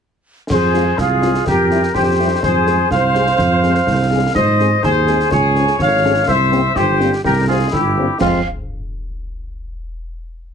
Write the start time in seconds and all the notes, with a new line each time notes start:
0.50 F2 G#4 C5, concert bass drum, snare, crash
0.74 G#3 C4 F4, snare
0.98 C2 F4 G#4, concert bass drum, snare
1.22 G#3 C4 F4, snare
1.34 snare
1.46 F2 G4 A#4, concert bass drum, snare
1.71 G3 C4 E4, snare
1.83 snare
1.94 F2 G4 C5, concert bass drum, snare
2.19 G3 C4 E4
2.43 F2 G#4 C5, concert bass drum, snare
2.66 G#3 C4 G#4, snare
2.91 C2 C5 F5, concert bass drum, snare
3.15 G#3 C4 G#4, snare
3.26 snare
3.38 F2, concert bass drum, snare
3.63 G#3 C4 G#4, snare
3.75 snare
3.87 C2, concert bass drum, snare
4.11 G#3 C4 G#4
4.34 G#2 C5 D#5, concert bass drum, snare, crash
4.59 G#3 C4 G#4, snare
4.83 D#2 G#4 C5, concert bass drum, snare
5.07 G#3 C4 G#4, snare
5.20 snare
5.31 C#2 G#4 C#5, concert bass drum, snare
5.55 F3 C#4 G#4, snare
5.67 snare
5.79 G#1 C#5 F5, concert bass drum, snare
6.04 F3 C#4 G#4
6.27 C2 C5 E5, concert bass drum, snare
6.52 G3 A#3 C4, snare
6.76 G1 G4 C5, concert bass drum, snare
7.00 G3 A#3 C4, snare
7.13 snare
7.24 C2 G4 A#4, concert bass drum, snare
7.47 G3 A#3 C4 F4 G#4
7.71 G1 E4 G4, concert bass drum, snare
7.97 G3 A#3 C4
8.19 F2 F3 G#3 C4 F4 F5, concert bass drum, snare, crash